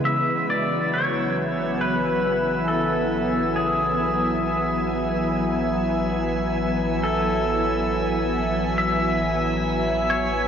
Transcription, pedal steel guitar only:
\new Staff \with { instrumentName = "Pedal steel guitar" } { \time 4/4 \key a \lydian \tempo 4 = 69 e''8 d''8 cis''4 b'4 a'4 | gis'2.~ gis'8 r8 | a'2 e''4. cis''8 | }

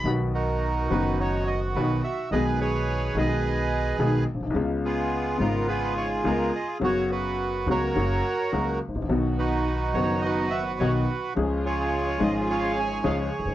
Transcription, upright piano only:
\new Staff \with { instrumentName = "Upright piano" } { \clef bass \time 4/4 \key b \major \tempo 4 = 106 <b,, b, dis fis b fis'>4. <fis,, fis, dis fis b fis'>4. <b,, b, dis fis b fis'>8 r8 | <b,, b, dis gis b gis'>4. <b,, b, dis gis b gis'>4. <b,, b, dis gis b gis'>8 r32 ais,,32 b,,32 c,32 | <cis, cis gis b eis'>4. <gis,, gis, cis gis b eis'>4. <cis, cis gis b eis'>8 r8 | <fis, cis fis b fis'>4. <cis, cis fis b fis'>8 <fis, cis fis ais fis'>8 r8 <cis, cis fis ais fis'>8 r32 gis,,32 a,,32 ais,,32 |
<b,, b, dis fis b fis'>4. <fis,, fis, dis fis b fis'>4. <b,, b, dis fis b fis'>8 r8 | <cis, cis eis gis cis' gis'>4. <gis,, gis, eis gis cis' gis'>4. <cis, cis eis gis cis' gis'>8 r32 eis,,32 fis,,32 r32 | }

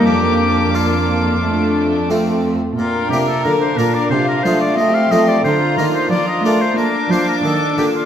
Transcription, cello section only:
\new Staff \with { instrumentName = "Cello section" } { \clef bass \time 4/4 \key bes \major \tempo 4 = 90 f,2.~ f,8 r8 | bes,8 c8 d8 bes,8 c8 f8 a8 f8 | d8 ees8 f8 a8 bes8 f8 ees8 d8 | }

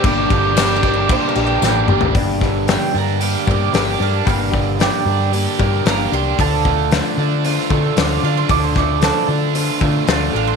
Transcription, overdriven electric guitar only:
\new Staff \with { instrumentName = "Overdriven electric guitar" } { \time 4/4 \key g \minor \tempo 4 = 113 <g, d g bes d' g'>8 <g bes d' g'>8 <g bes d' g'>8 <g bes d' g'>8 <g, d g bes d' g'>4 <g bes d' g'>8 <g bes d' g'>8 | g,8 d8 g8 d'8 g'8 bes8 g'8 d'8 | g,8 d8 g8 d'8 g'8 bes8 g'8 d'8 | d8 a8 d8 d'8 f'8 a8 f'8 d'8 |
d8 a8 d8 d'8 f'8 a8 f'8 d'8 | }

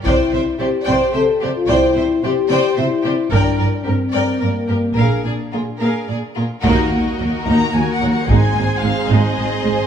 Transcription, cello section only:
\new Staff \with { instrumentName = "Cello section" } { \clef bass \time 3/4 \key bes \lydian \tempo 4 = 110 c8 c8 c8 c8 c8 c8 | c8 c8 c8 c8 c8 c8 | g,8 g,8 g,8 g,8 g,8 g,8 | bes,8 bes,8 bes,8 bes,8 bes,8 bes,8 |
\key ees \dorian ees,8 ees,8 ees,8 ees,8 ees,8 ees,8 | aes,8 aes,8 aes,8 aes,8 aes,8 aes,8 | }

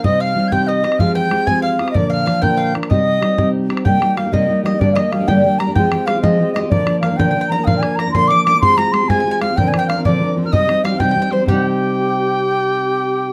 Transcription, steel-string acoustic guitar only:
\new Staff \with { instrumentName = "Steel-string acoustic guitar" } { \time 6/8 \key c \minor \tempo 4. = 126 <c g c' ees' g'>4 <g c' ees' g'>8 <c g c' ees' g'>4 <c' ees' g'>8 | <f aes c' f' g'>4 <aes c' f' g'>8 <f aes c' f' g'>4 <c' f' g'>8 | <bes, d f bes d' bes'>4 <f bes d' bes'>8 <bes, d f bes d' bes'>4 <f bes d' bes'>8 | <c g c' ees' g'>4 <g c' ees' g'>8 <c g c' ees' g'>4 <c' ees' g'>8 |
<c g bes ees' g'>8 <g bes ees' g'>8 <g bes ees' g'>16 <bes ees' g'>16 <c g bes ees' g'>8 <g bes ees' g'>8 <g bes ees' g'>16 <bes ees' g'>16 | <g, d g bes d' g'>8 <g bes d' g'>8 <g bes d' g'>16 <g bes d' g'>16 <g, d g bes d' g'>8 <g bes d' g'>8 <g bes d' g'>16 <g bes d' g'>16 | <f aes c' f' g'>8 <aes c' f' g'>8 <aes c' f' g'>16 <c' f' g'>16 <f aes c' f' g'>8 <aes c' f' g'>8 <aes c' f' g'>16 <c' f' g'>16 | <bes, d f bes d' bes'>8 <f bes d' bes'>8 <f bes d' bes'>16 <f bes d' bes'>16 <bes, d f bes d' bes'>8 <f bes d' bes'>8 <f bes d' bes'>16 <f bes d' bes'>16 |
<bes, d f bes d' bes'>8 <f bes d' bes'>8 <f bes d' bes'>16 <f bes d' bes'>16 <bes, d f bes d' bes'>8 <f bes d' bes'>8 <f bes d' bes'>16 <f bes d' bes'>16 | <aes c' f' g'>8 <aes c' f' g'>8 <aes c' f' g'>16 <c' f' g'>16 <aes c' f' g'>8 <aes c' f' g'>8 <aes c' f' g'>16 <c' f' g'>16 | <bes, d f c' d' bes'>8 <f c' d' bes'>8 <f c' d' bes'>16 <f c' d' bes'>16 <bes, d f c' d' bes'>8 <f c' d' bes'>8 <f c' d' bes'>16 <f c' d' bes'>16 | <c g c' ees' g'>8 <g c' ees' g'>8 <g c' ees' g'>16 <c' ees' g'>16 <c g c' ees' g'>8 <g c' ees' g'>8 <g c' ees' g'>16 <c' ees' g'>16 |
<c g c' ees' g'>2.~ | <c g c' ees' g'>2. | }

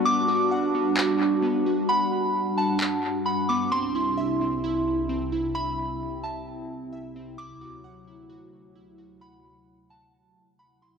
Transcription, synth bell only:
\new Staff \with { instrumentName = "Synth bell" } { \time 4/4 \key g \major \tempo 4 = 131 d'''2. r4 | b''4. a''4. b''8 d'''8 | c'''2. r4 | b''4. a''8 r2 |
d'''2. r4 | b''4. a''4. b''8 c'''8 | }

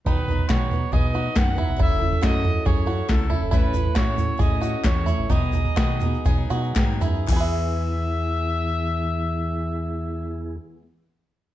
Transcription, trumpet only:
\new Staff \with { instrumentName = "Trumpet" } { \time 4/4 \key e \major \tempo 4 = 130 b'4 cis''4 dis''4 fis''4 | e''4 dis''4 cis''4 a'8. r16 | b'4 cis''4 dis''4 cis''4 | dis''2. r4 |
e''1~ | e''1 | }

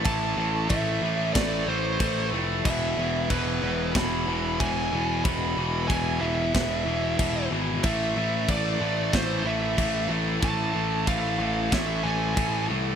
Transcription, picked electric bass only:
\new Staff \with { instrumentName = "Picked electric bass" } { \clef bass \time 4/4 \key e \phrygian \tempo 4 = 93 a,,8 a,,8 a,,8 a,,8 a,,8 a,,8 a,,8 f,,8 | e,,8 e,,8 e,,8 e,,8 e,,8 e,,8 e,,8 e,,8 | e,,8 e,,8 e,,8 e,,8 e,,8 e,,8 e,,8 gis,,8 | a,,8 a,,8 a,,8 a,,8 a,,8 a,,8 a,,8 a,,8 |
a,,8 a,,8 a,,8 a,,8 a,,8 a,,8 a,,8 c,8 | }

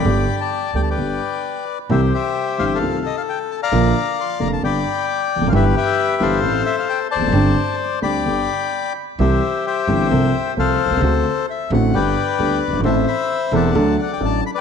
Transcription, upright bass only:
\new Staff \with { instrumentName = "Upright bass" } { \clef bass \time 4/4 \key g \mixolydian \tempo 4 = 132 g,,16. r4 r32 d,16. r32 g,,16. r4. r32 | c,16. r4 r32 g,,16. r32 c,16. r4. r32 | bes,,16. r4 r32 f,,16. r32 g,,16. r4 r16 e,,32 f,,32 fis,,32 | g,,16. r4 r32 g,,16. r32 a,,16. r4 r16 e,,32 f,,32 fis,,32 |
g,,16. r4 r32 d,16. r32 g,,16. r4. r32 | c,16. r4 r32 g,,16. r32 c,16. r8 r32 c,16. r16 b,,32 c,32 des,32 | d,16. r4 r32 a,,16. r32 g,,16. r8 r32 d,16. r16 fis,,32 g,,32 aes,,32 | a,,16. r4 r32 e,,16. r32 d,16. r8 r32 a,,16. r8 r32 | }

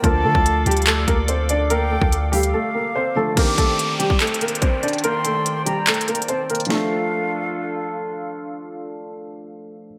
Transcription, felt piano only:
\new Staff \with { instrumentName = "Felt piano" } { \time 4/4 \key d \phrygian \tempo 4 = 144 <d f a f' a'>1~ | <d f a f' a'>2.~ <d f a f' a'>8 <d f a f' a'>8 | <ees c' d' g'>1~ | <ees c' d' g'>1 |
<f a d' a'>1~ | <f a d' a'>1 | }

